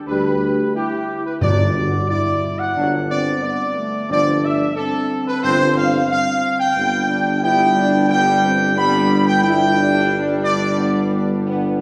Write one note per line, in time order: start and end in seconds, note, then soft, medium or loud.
0.07 0.63 D2 medium
0.07 0.32 G3 medium
0.07 0.32 D4 medium
0.07 0.71 G4 medium
0.07 0.70 B4 loud
0.76 1.38 E4 loud
0.76 1.22 G4 loud
1.26 1.34 B4 medium
1.41 1.98 G1 medium
1.41 2.38 G2 loud
1.41 1.66 F#3 medium
1.41 1.76 D4 medium
1.41 1.66 D4 medium
1.41 2.05 D5 loud
1.76 2.07 F#4 medium
2.09 2.73 E4 medium
2.09 2.56 D5 loud
2.59 2.96 F#5 loud
2.76 3.32 G1 medium
2.76 3.00 F#3 medium
2.76 3.00 D4 medium
2.76 3.08 D4 medium
3.10 3.41 C4 medium
3.10 3.41 D5 loud
3.42 3.74 B3 medium
3.42 4.06 D5 loud
3.76 4.08 A3 medium
4.09 4.66 G1 medium
4.09 4.33 F3 medium
4.09 4.33 C4 medium
4.09 4.77 D4 loud
4.09 4.42 D5 loud
4.44 4.77 E5 loud
4.76 6.77 C4 medium
4.76 5.23 A4 loud
5.27 5.43 B4 loud
5.43 6.00 G1 loud
5.43 5.67 F3 loud
5.43 5.67 C4 loud
5.43 5.75 C5 loud
5.76 6.08 F5 loud
6.10 6.57 F5 loud
6.60 7.39 G5 loud
6.76 11.81 G1 loud
6.76 7.40 G3 medium
6.76 7.08 B3 medium
6.76 7.40 B3 medium
7.09 7.41 D4 loud
7.42 8.07 G3 loud
7.42 8.07 B3 loud
7.42 7.74 E4 loud
7.42 8.06 G5 loud
7.76 8.08 D4 loud
8.10 8.74 G3 loud
8.10 8.41 B3 loud
8.10 8.74 D4 medium
8.10 8.73 G5 loud
8.44 8.75 C4 loud
8.76 9.40 G3 loud
8.76 9.40 B3 loud
8.76 9.26 D4 loud
8.76 9.24 B5 loud
9.27 9.42 G5 loud
9.43 11.81 G3 loud
9.43 11.81 D4 loud
9.43 9.75 E4 loud
9.43 10.28 G5 loud
9.76 10.74 D4 loud
10.45 11.08 D5 loud
10.78 11.41 B3 loud
11.46 11.77 B3 loud